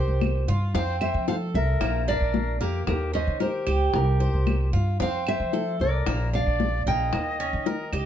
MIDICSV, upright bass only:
0, 0, Header, 1, 2, 480
1, 0, Start_track
1, 0, Key_signature, -1, "major"
1, 0, Tempo, 531444
1, 676, Time_signature, 4, 2, 24, 8
1, 7276, End_track
2, 0, Start_track
2, 0, Title_t, "Upright bass"
2, 0, Program_c, 0, 32
2, 69, Note_on_c, 0, 36, 81
2, 414, Note_off_c, 0, 36, 0
2, 432, Note_on_c, 0, 43, 89
2, 662, Note_off_c, 0, 43, 0
2, 669, Note_on_c, 0, 41, 85
2, 1014, Note_off_c, 0, 41, 0
2, 1032, Note_on_c, 0, 53, 97
2, 1376, Note_off_c, 0, 53, 0
2, 1395, Note_on_c, 0, 36, 91
2, 1624, Note_off_c, 0, 36, 0
2, 1632, Note_on_c, 0, 34, 93
2, 1976, Note_off_c, 0, 34, 0
2, 1991, Note_on_c, 0, 34, 83
2, 2336, Note_off_c, 0, 34, 0
2, 2353, Note_on_c, 0, 41, 81
2, 2583, Note_off_c, 0, 41, 0
2, 2593, Note_on_c, 0, 39, 98
2, 2937, Note_off_c, 0, 39, 0
2, 2955, Note_on_c, 0, 51, 91
2, 3298, Note_off_c, 0, 51, 0
2, 3313, Note_on_c, 0, 37, 84
2, 3543, Note_off_c, 0, 37, 0
2, 3556, Note_on_c, 0, 36, 86
2, 3899, Note_off_c, 0, 36, 0
2, 3914, Note_on_c, 0, 36, 76
2, 4258, Note_off_c, 0, 36, 0
2, 4273, Note_on_c, 0, 43, 86
2, 4503, Note_off_c, 0, 43, 0
2, 4516, Note_on_c, 0, 41, 93
2, 4859, Note_off_c, 0, 41, 0
2, 4875, Note_on_c, 0, 53, 86
2, 5219, Note_off_c, 0, 53, 0
2, 5236, Note_on_c, 0, 36, 79
2, 5465, Note_off_c, 0, 36, 0
2, 5478, Note_on_c, 0, 34, 89
2, 5820, Note_off_c, 0, 34, 0
2, 5838, Note_on_c, 0, 34, 82
2, 6181, Note_off_c, 0, 34, 0
2, 6200, Note_on_c, 0, 34, 85
2, 6427, Note_off_c, 0, 34, 0
2, 6438, Note_on_c, 0, 39, 91
2, 6781, Note_off_c, 0, 39, 0
2, 6801, Note_on_c, 0, 51, 85
2, 7143, Note_off_c, 0, 51, 0
2, 7158, Note_on_c, 0, 37, 77
2, 7276, Note_off_c, 0, 37, 0
2, 7276, End_track
0, 0, End_of_file